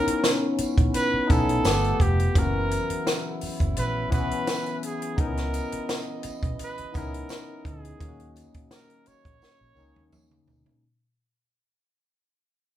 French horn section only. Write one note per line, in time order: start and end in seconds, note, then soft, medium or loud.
0.00 1.63 E3 medium
0.00 2.33 B3 medium
0.00 1.63 C#4 medium
1.65 2.35 F3 medium
1.65 2.35 A3 medium
1.65 2.35 G4 medium
2.36 7.97 C#3 medium
2.36 5.16 F#3 medium
2.36 7.97 B3 medium
2.36 5.16 E4 medium
5.20 7.98 E3 medium
5.20 10.80 D#5 medium
8.00 10.80 C#3 medium
8.00 10.80 F#3 medium
8.00 10.80 A#3 medium